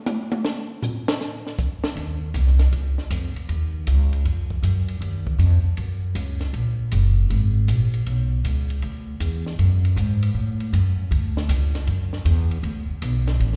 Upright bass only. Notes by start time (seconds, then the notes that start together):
1.96 D#2
2.34 C2
2.73 C#2
3.10 F2
3.36 muted upright bass stroke
3.49 D#2
3.87 C#2
4.25 F2
4.63 F#2
5.01 D#2
5.38 F2
5.64 muted upright bass stroke
5.78 F#2
6.15 C#2
6.53 A#1
6.92 F#1
7.30 G#1
7.68 A#1
8.07 B1
8.44 C#2
8.83 D2
9.20 E2
9.59 F#2
9.96 G#2
10.34 A2
10.73 F#2
11.11 D2
11.49 C#2
11.87 F#2
12.25 E2
12.63 D2
12.89 muted upright bass stroke
13.02 B1
13.40 A1